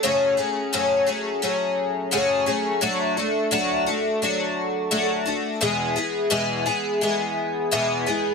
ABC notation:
X:1
M:4/4
L:1/8
Q:1/4=86
K:F#m
V:1 name="Twelve-string acoustic guitar"
[F,,C,F,A,CG] [F,A,CG] [F,,C,F,A,CG] [F,A,CG] [F,A,CG]2 [F,,C,F,A,CG] [F,A,CG] | [F,A,DF] [A,DF] [F,A,DF] [A,DF] [F,A,DF]2 [F,A,DF] [A,DF] | [E,,B,,E,G,B,G] [E,G,B,G] [E,,B,,E,G,B,G] [E,G,B,G] [E,G,B,G]2 [E,,B,,E,G,B,G] [E,G,B,G] |]